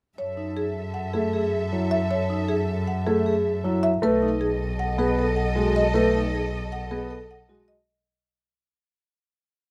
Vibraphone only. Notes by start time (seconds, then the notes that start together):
0.37 D#4
1.14 A4
1.33 G#4
1.72 E4
2.30 D#4
3.07 A4
3.26 G#4
3.65 E4
4.03 A4
4.22 D#4
4.99 B4
5.19 A4
5.57 F#4
5.95 A4
6.15 D#4
6.91 B4
7.10 A4
7.49 F#4